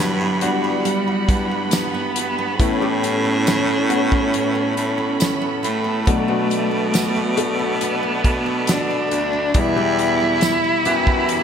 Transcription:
Already playing: G2 D3 F#3 G3 B3 D4 E4 F#4 F#5 B5
0.00 F#4, snare
0.21 B3
0.41 G3 B3 D4 F#4, closed hi-hat
0.45 G3
0.64 B3
0.85 G3, closed hi-hat
1.07 B3
1.29 G2 D4, kick, closed hi-hat
1.51 B3
1.71 F#4, snare, closed hi-hat, tambourine
1.76 B3
1.94 B3
2.15 G2 F#4, closed hi-hat
2.39 B3
2.59 A2 E3 A3 B3 C#4 E4 A4 C#5, kick, closed hi-hat
2.81 A3 B3 C#4 G4
3.03 C#4, closed hi-hat
3.25 B3
3.46 E4, snare, closed hi-hat, tambourine
3.67 B3
3.89 A3 B3 C#4 E4 F#4, closed hi-hat
4.11 B3, kick
4.34 A2, closed hi-hat
4.55 B3
4.77 A2 C#4, closed hi-hat
4.98 B3
5.20 E4, snare, closed hi-hat, tambourine
5.41 B3
5.63 A2 E4, closed hi-hat
5.67 A3
5.84 B3
6.06 B2 F#3 A3 B3 D4 F#4 D5, kick, closed hi-hat
6.28 A3 B3 D4 F#4
6.50 D4, closed hi-hat
6.71 A3
6.94 F#4, snare, closed hi-hat, tambourine
7.16 A3
7.37 A3 B3 D4 F#4 A4, closed hi-hat
7.59 A3
7.81 B2, closed hi-hat
8.03 A3
8.24 B2 D4, kick, closed hi-hat
8.46 A3
8.67 F#4, snare, closed hi-hat, tambourine
8.72 D4
8.90 A3
9.11 D2 F#4, closed hi-hat
9.33 A3
9.54 E2 B2 G3 B3 E4 G4 E5 B5, kick, closed hi-hat
9.76 G3 B3 E4 G4
9.99 B3, closed hi-hat
10.21 G3
10.41 E4, snare, closed hi-hat, tambourine
10.64 G3
10.85 F#2 B3 E4 F#4 G4, closed hi-hat
11.07 kick
11.29 E2, closed hi-hat

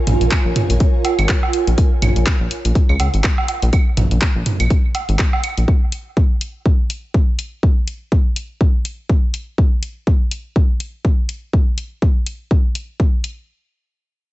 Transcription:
Already playing: F4 A#4 C#5 G#5
0.07 A#1, closed hi-hat, mid tom
0.21 A#1, closed hi-hat
0.31 kick, clap, closed hi-hat, claves
0.45 A#1
0.56 closed hi-hat, mid tom
0.70 A#1, closed hi-hat
0.80 kick, closed hi-hat
1.05 closed hi-hat, low woodblock
1.19 G#1, closed hi-hat, claves
1.29 kick, clap, closed hi-hat
1.43 low woodblock
1.53 closed hi-hat
1.67 A#1, closed hi-hat
1.78 kick, closed hi-hat
2.02 A#1, closed hi-hat, mid tom, claves
2.16 A#1, closed hi-hat
2.27 kick, clap, closed hi-hat
2.41 A#1
2.51 closed hi-hat
2.65 A#1, closed hi-hat
2.75 kick, closed hi-hat
2.89 C#2, claves
3.00 C#2, closed hi-hat, low woodblock
3.14 G#1, closed hi-hat
3.24 kick, clap, closed hi-hat
3.38 low woodblock
3.48 closed hi-hat, low woodblock
3.62 A#1, closed hi-hat
3.73 kick, closed hi-hat, claves
3.97 A#1, closed hi-hat, mid tom
4.11 A#1, closed hi-hat
4.22 kick, clap, closed hi-hat
4.36 A#1
4.46 closed hi-hat, mid tom
4.60 A#1, closed hi-hat, claves
4.70 kick, closed hi-hat
4.95 closed hi-hat, low woodblock
5.09 G#1, closed hi-hat
5.19 kick, clap, closed hi-hat
5.33 low woodblock
5.44 closed hi-hat, claves
5.58 A#1, closed hi-hat
5.68 kick
5.92 closed hi-hat
6.17 kick
6.41 closed hi-hat
6.66 kick
6.90 closed hi-hat
7.14 kick
7.39 closed hi-hat
7.63 kick
7.88 closed hi-hat
8.12 kick
8.36 closed hi-hat
8.61 kick
8.85 closed hi-hat
9.09 kick
9.34 closed hi-hat
9.58 kick
9.83 closed hi-hat
10.07 kick
10.31 closed hi-hat
10.56 kick
10.80 closed hi-hat
11.05 kick
11.29 closed hi-hat
11.53 kick
11.78 closed hi-hat
12.02 kick
12.26 closed hi-hat
12.51 kick
12.75 closed hi-hat
13.00 kick
13.24 closed hi-hat

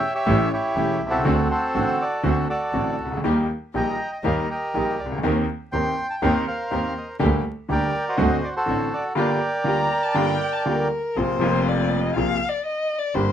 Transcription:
Already playing: C#5 E5 G5
0.14 G4 C#5 E5
0.25 A1 A2 E3 A3 C#4 G4
0.53 E4 G4 C#5
0.75 E1 E2 E3 A3 C#4 G4
1.01 C2
1.07 B1 C4 F#4 A4
1.12 C2
1.19 C#2
1.24 D2 D3 A3 C4 D4 F#4
1.50 F#4 A4 C5
1.74 A1 A2 D3 A3 C4 D4 F#4
2.02 D5
2.23 D2 D3 A3 C4 D4 F#4 A4 C5
2.49 F#4 A4 D5
2.73 A1 A2 D3 A3 C4 D4 F#4
3.00 C#2
3.05 C2
3.12 C#2
3.17 D2
3.24 D#2 D#3 G3 A#3 D#4 G4
3.74 A#1 A#2 D#3 G3 A#3 D#4 G4 D#5 G5 A#5
4.12 G5
4.23 D#2 D#3 G3 A#3 D#4 G4 A#4 F5
4.50 G4 A#4 D#5
4.74 A#1 A#2 D#3 G3 A#3 D#4 G4
4.99 C#2 D5
5.06 C2
5.12 C#2
5.18 D2
5.23 D#2 D#3 A#3 C4 D#4 G4 A#4
5.72 D#2 D#3 A#3 C4 D#4 G4 A#4 G5 C6
6.10 A5
6.22 D#2 D#3 A#3 C4 D#4 G4 A#4 C5 G5
6.47 A#4 C5 F5
6.71 D#2 D#3 A#3 C4 D#4 G4 A#4
6.98 D#5
7.19 D2 D3 G3 A#3 D4 G4
7.68 D2 D3 G3 A#3 D4 G4 A#4 D5 G5
8.09 F#4 C5 D#5
8.17 D2 D3 A3 C4 D4 F#4
8.44 D5
8.56 F#4 A4 C5
8.66 A1 A2 D3 A3 C4 D4 F#4
8.94 D5
9.15 G1 G2 D3 G3 A#3 F4 G4 A#4 D5 G5
9.64 D2 D3 G3 A#3 F4 G4 A#5
10.03 A5
10.14 G1 G2 D3 G3 A#3 F4 G4 G5
10.53 A5
10.65 D2 D3 G3 A#3 F4 G4 A#4
11.16 A#1 A#2 C3 F3 A#3 C4 F4 C5
11.39 F1 F2 C3 F3 A#3 C4 F4
11.68 D5
12.00 D#5
12.15 A#1 A#2 C3 F3 A#3 C4 F4 F5
12.49 D5
12.66 D#5
12.98 D5
13.14 G1 G2 D3 G3 A#3 D4 G4 C5

